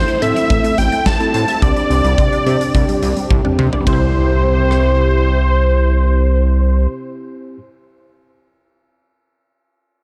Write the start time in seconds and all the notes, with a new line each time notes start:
Already playing: A3 C4 E4 C5
0.08 E4, closed hi-hat
0.22 A2 C4 E4 A4 E5, closed hi-hat
0.36 E4, closed hi-hat
0.50 A1 A3, kick, closed hi-hat
0.64 A3, closed hi-hat
0.78 A1 G5, closed hi-hat
0.92 A3, closed hi-hat
1.06 A1 A5, kick, snare
1.20 C4 E4 A4, closed hi-hat
1.34 A2 C5 A5, closed hi-hat
1.48 E5, closed hi-hat
1.62 C2 C3 G3 C4 D4 G4 D5, kick, closed hi-hat
1.76 G3, closed hi-hat
1.90 C2 C4, closed hi-hat
2.04 C2 G3, closed hi-hat
2.18 C2 C4, kick, closed hi-hat
2.32 D4, closed hi-hat
2.46 C3 C4 D4 G4, closed hi-hat
2.60 D4, closed hi-hat
2.75 C2 G3, kick, closed hi-hat
2.88 G3, closed hi-hat
3.03 C2, closed hi-hat
3.17 G3, closed hi-hat
3.30 C2, kick, high tom
3.45 C4 D4 G4, mid tom
3.59 C3 C5, mid tom
3.73 D5, floor tom
3.81 G3
3.85 C2 C3 C4 E4 G4 C5, kick, ride
3.93 E4
4.71 cross-stick